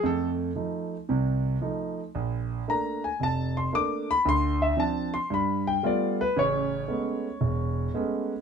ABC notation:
X:1
M:4/4
L:1/8
Q:"Swing" 1/4=114
K:Bblyd
V:1 name="Grand piano"
A z6 z | z2 b _a =a c' d' =b | c' e a c' =b g d =B | ^c6 z2 |]
V:2 name="Grand piano"
[F,,A,]2 [F,A,_E] z [C,,C,]2 [F,A,E] z | B,,,2 [A,B,D] z F,,,2 [A,B,D] z | [D,,D,]2 [F,CD] z G,,2 [G,A,=B,F] z | [A,,,^C,]2 [^G,A,=B,^C] z E,,,2 [G,A,B,C] z |]